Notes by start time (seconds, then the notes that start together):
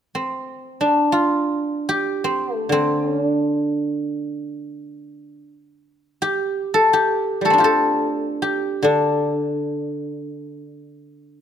0.15 C4
0.81 D4
1.12 F4
1.89 G4
2.24 C4
2.55 A3
2.69 D3 C4
3.04 C#4
3.24 D4
6.22 G4
6.74 A4
6.93 G4
7.41 G3 A3
7.45 A4
7.50 C4 D4
7.58 F4 G4
7.64 A4
8.42 G4
8.83 D3 D4